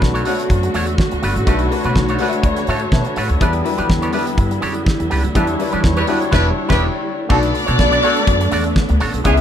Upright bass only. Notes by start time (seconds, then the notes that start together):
0.02 B1
0.50 F#2
0.75 E2
1.12 D2
1.23 G1
1.36 A1
1.47 B1
1.85 B2
1.96 B1
2.44 D2
2.68 A2
2.92 B2
3.16 A2
3.30 D2
3.41 E2
3.79 E3
3.90 E2
4.38 G2
4.63 F#2
5.00 E2
5.11 C#2
5.25 D2
5.36 E2
5.74 E3
5.84 E2
6.33 E1
6.70 E1
7.30 B1
7.68 B2
7.79 B1
8.27 F#2
8.52 E2
8.90 D2
9.01 A1
9.14 B1
9.25 C#2